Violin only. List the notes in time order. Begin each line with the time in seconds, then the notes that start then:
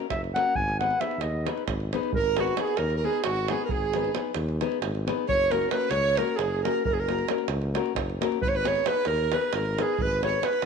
2.17 A#4
2.40 F#4
2.58 G#4
2.78 A#4
2.96 A#4
3.04 G#4
3.24 F#4
3.50 G#4
3.65 A#4
3.71 G#4
5.27 C#5
5.50 A#4
5.71 B4
5.90 C#5
6.16 A#4
6.36 G#4
6.63 A#4
6.84 A#4
6.93 G#4
6.99 A#4
8.43 B4
8.47 C#5
8.55 B4
8.67 C#5
8.86 B4
9.08 A#4
9.33 B4
9.54 A#4
9.82 G#4
10.00 B4
10.26 C#5
10.47 B4